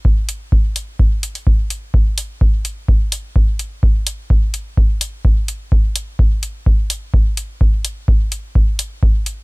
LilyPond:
\new DrumStaff \with { instrumentName = "Drums" } \drummode { \time 4/4 \tempo 4 = 127 bd8 hho8 bd8 hho8 bd8 hho16 hho16 bd8 hho8 | bd8 hho8 bd8 hho8 bd8 hho8 bd8 hho8 | bd8 hho8 bd8 hho8 bd8 hho8 bd8 hho8 | bd8 hho8 bd8 hho8 bd8 hho8 bd8 hho8 |
bd8 hho8 bd8 hho8 bd8 hho8 bd8 hho8 | }